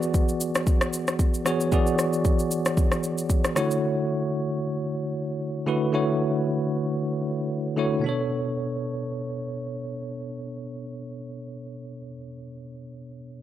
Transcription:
Already playing: E3 B3 F#4 G#4 D5
0.02 shaker
0.14 kick, shaker
0.29 shaker
0.41 shaker
0.55 cross-stick, shaker
0.67 kick, shaker
0.81 cross-stick, shaker
0.93 shaker
1.08 cross-stick, shaker
1.19 kick, shaker
1.34 shaker
1.45 E3 B3 F#4 G#4 C#5, cross-stick, shaker
1.60 shaker
1.72 E3 B3 F#4 G#4 D5, kick, shaker
1.87 shaker
1.99 cross-stick, shaker
2.13 shaker
2.25 kick, shaker
2.39 shaker
2.51 shaker
2.65 cross-stick, shaker
2.77 kick, shaker
2.92 cross-stick, shaker
3.03 shaker
3.18 shaker
3.30 kick, shaker
3.44 cross-stick, shaker
3.55 D3 A3 E4 F#4 C#5, cross-stick, shaker
3.71 shaker
5.66 D3 A3 E4 F#4 B4
5.92 D3 A3 E4 F#4 C#5
7.77 D3 A3 E4 F#4 C#5
7.99 B2 B3
8.04 D4 A4
8.09 C#5

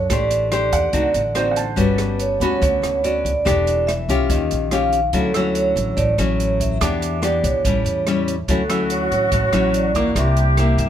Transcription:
Already playing: C#5
0.10 A1 A3 D4 G4 C5 D5, kick, cross-stick, closed hi-hat
0.31 closed hi-hat
0.51 D4 G4 C5, cross-stick, closed hi-hat
0.72 E2 D5 F#5, kick, closed hi-hat
0.93 D2 D3 C4 D#4 F#4, kick, closed hi-hat
1.14 A1, closed hi-hat
1.35 C4 D#4 F#4 C5, cross-stick, closed hi-hat
1.51 F#5
1.56 A5, closed hi-hat
1.76 G1 G3 B3 C#4 F#4 B4, kick, closed hi-hat
1.98 cross-stick, closed hi-hat
2.19 C#5, closed hi-hat
2.40 D2 B3 C#4 F#4 B5, closed hi-hat
2.62 D2 D3 C#5, kick, closed hi-hat
2.82 D2, cross-stick, closed hi-hat
3.04 B3 C#4 F#4 D5, closed hi-hat
3.25 kick, closed hi-hat
3.45 E1 E3 A3 D4 G4 D5, kick, cross-stick, closed hi-hat
3.67 closed hi-hat
3.87 E5, cross-stick, closed hi-hat
4.08 B1 C#4 F4 G4, kick, closed hi-hat
4.30 D#2 D#3 D#5, kick, closed hi-hat
4.51 A#1, closed hi-hat
4.71 C#4 F4 G4 F5, cross-stick, closed hi-hat
4.93 closed hi-hat
5.13 D2 D3 F#3 C#4 E4 A4, kick, closed hi-hat
5.34 F#3 C#4 E4 E6, cross-stick, closed hi-hat
5.55 C#5, closed hi-hat
5.76 A1, closed hi-hat
5.97 A1 A2 D5, kick, closed hi-hat
6.18 A1 F#3 C#4 E4 C#5, cross-stick, closed hi-hat
6.40 closed hi-hat
6.60 E5, kick, closed hi-hat
6.81 E2 E3 B3 D4 G4 D6, kick, cross-stick, closed hi-hat
7.02 closed hi-hat
7.22 B3 D4 G4 D5, cross-stick, closed hi-hat
7.44 A#1 C#5, kick, closed hi-hat
7.65 A1 A2 G3 C#4 E4, kick, closed hi-hat
7.85 E2, closed hi-hat
8.07 G3 C#4 E4, cross-stick, closed hi-hat
8.28 closed hi-hat
8.48 D2 D3 F#3 C#4 E4 F#4 A4, kick, closed hi-hat
8.70 F#3 C#4 E4 E6, cross-stick, closed hi-hat
8.90 C#5, closed hi-hat
9.11 A1 C#5, closed hi-hat
9.32 A1 A2, kick, closed hi-hat
9.52 A1 F#3 C#4 E4, cross-stick, closed hi-hat
9.74 D5, closed hi-hat
9.95 A#3 E4 D6, kick, closed hi-hat
10.15 C2 C3 G4 E5, kick, cross-stick, closed hi-hat
10.37 closed hi-hat
10.57 A#3 E4 E5, cross-stick, closed hi-hat
10.78 G2 E5, kick, closed hi-hat

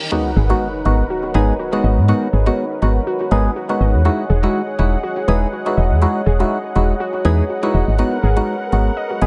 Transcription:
Already playing: D#4 G4 C#5 A#5, reverse cymbal
0.11 G#3 B3 D#4 F#4 A#4 B4 F#5, sub drop
0.29 G#4
0.36 G#1 G#4
0.46 G#3 B3 D#4 F#4 F#5
0.85 G#1 G#3 B3 D#4 F#4
1.10 F#4
1.24 F#4
1.34 G#1 G#3 B3 D#4 G#4 B4
1.59 F#4
1.73 G#3 B3 D#4 F#4 B4
1.84 G#1 D#5
1.97 G#2
2.08 G#3 B3 D#4 F#4
2.33 G#1 G#4
2.46 G#3 B3 D#4 F#4
2.82 G#1 G#3 B3 D#4 F#4
3.07 F#4
3.21 F#4
3.31 G#1 G#3 B3 D#4 G#4 B4
3.56 F#4
3.69 G#3 B3 D#4 F#4 B4
3.80 G#1 D#5
3.94 E2
4.05 G#3 D#4 E4 F#4 G#4 D#5
4.18 A#5
4.30 E1 G#4
4.43 G#3 D#4 E4 F#4
4.79 E1 G#3 D#4 E4 F#4
5.03 F#4
5.17 F#4
5.28 E1 G#3 D#4 E4 G#4 B4
5.53 F#4
5.66 G#3 D#4 E4 F#4 B4
5.77 E1 D#5
5.91 E2
6.02 G#3 D#4 E4 F#4
6.26 E1 G#4
6.40 G#3 D#4 E4 F#4
6.75 E1 G#3 D#4 E4 F#4
7.00 F#4
7.14 F#4
7.25 E2 G#3 D#4 E4 G#4 B4
7.50 F#4
7.63 G#3 D#4 E4 F#4 B4
7.74 E1 D#5
7.88 G#1
7.98 G#3 B3 D#4 F#4 A#4 B4
8.23 G#1 G#4
8.37 G#3 B3 D#4 F#4
8.72 G#1 G#3 B3 D#4 F#4
8.97 D#5
9.11 F#4
9.21 G#1 G#3 B3 D#4 G#4 B4

